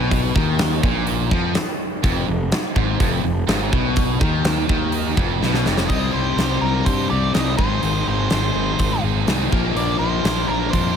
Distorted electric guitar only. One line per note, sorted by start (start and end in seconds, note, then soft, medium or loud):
0.00 0.35 B2 loud
0.36 0.83 D#3 loud
0.84 1.31 A#2 loud
1.32 1.55 F3 loud
2.03 2.27 F2 medium
2.28 2.47 F2 medium
2.76 2.99 G#2 loud
3.00 3.22 F2 medium
3.23 3.43 F2 medium
3.47 3.71 G#2 medium
3.71 4.19 B2 loud
4.20 4.67 D#3 medium
4.68 5.16 D#3 medium
5.18 5.41 F2 loud
5.41 5.65 B2 loud
5.65 5.88 F2 loud
5.89 6.37 C3 medium
5.89 6.35 G3 medium
5.89 6.16 C4 medium
5.89 6.15 D#4 medium
5.89 6.13 G4 medium
6.14 6.37 C4 medium
6.14 6.39 D#4 medium
6.14 6.38 G4 medium
6.37 6.62 G3 medium
6.37 6.61 C4 medium
6.37 6.61 D#4 medium
6.37 6.60 G4 medium
6.61 7.11 C3 medium
6.61 6.84 G3 medium
6.61 6.85 C4 medium
6.61 6.86 D#4 medium
6.61 6.86 G4 medium
6.85 7.33 G3 medium
6.85 7.11 C4 medium
6.85 7.10 D#4 medium
6.85 7.08 G4 medium
7.10 7.33 C4 medium
7.10 7.34 D#4 medium
7.10 7.34 G4 medium
7.33 7.56 C3 medium
7.33 7.57 G3 medium
7.33 7.57 C4 medium
7.33 7.57 D#4 medium
7.33 7.57 G4 loud
7.58 7.80 G#2 medium
7.58 7.81 D#3 medium
7.58 7.81 G#3 medium
7.58 7.82 C4 medium
7.58 7.83 D#4 medium
7.58 7.83 G#4 medium
7.81 8.31 G#2 medium
7.81 8.31 D#3 medium
7.81 8.08 G#3 medium
7.81 8.07 C4 medium
7.81 8.07 D#4 medium
7.81 8.05 G#4 medium
8.06 8.29 G#3 medium
8.06 8.30 C4 medium
8.06 8.31 D#4 medium
8.06 8.32 G#4 medium
8.31 8.55 G#3 medium
8.31 8.54 C4 medium
8.31 8.54 D#4 medium
8.31 8.53 G#4 medium
8.54 9.05 G#2 medium
8.54 9.04 D#3 medium
8.54 8.77 G#3 medium
8.54 8.79 C4 medium
8.54 8.79 D#4 medium
8.54 8.80 G#4 medium
8.78 9.04 G#3 medium
8.78 9.04 C4 medium
8.78 9.03 D#4 medium
8.78 9.01 G#4 medium
9.03 9.27 G#3 medium
9.03 9.28 C4 medium
9.03 9.28 D#4 medium
9.03 9.28 G#4 medium
9.27 9.50 G#2 medium
9.27 9.51 D#3 medium
9.27 9.51 G#3 medium
9.27 9.51 C4 medium
9.27 9.51 D#4 medium
9.27 9.51 G#4 medium
9.51 9.75 A#2 medium
9.51 9.76 D3 medium
9.51 9.77 F3 medium
9.51 9.77 A#3 medium
9.51 9.77 D4 medium
9.51 9.78 A#4 medium
9.76 10.25 A#2 medium
9.76 10.25 D3 medium
9.76 10.02 F3 medium
9.76 10.01 A#3 medium
9.76 10.00 D4 medium
9.76 9.99 A#4 medium
10.00 10.24 F3 medium
10.00 10.24 A#3 medium
10.00 10.25 D4 medium
10.00 10.26 A#4 medium
10.24 10.50 F3 medium
10.24 10.49 A#3 medium
10.24 10.48 D4 medium
10.24 10.48 A#4 medium
10.49 10.96 A#2 medium
10.49 10.96 D3 medium
10.49 10.72 F3 medium
10.49 10.73 A#3 medium
10.49 10.74 D4 medium
10.49 10.74 A#4 medium
10.73 10.96 F3 medium
10.73 10.96 A#3 medium
10.73 10.96 D4 medium
10.73 10.96 A#4 medium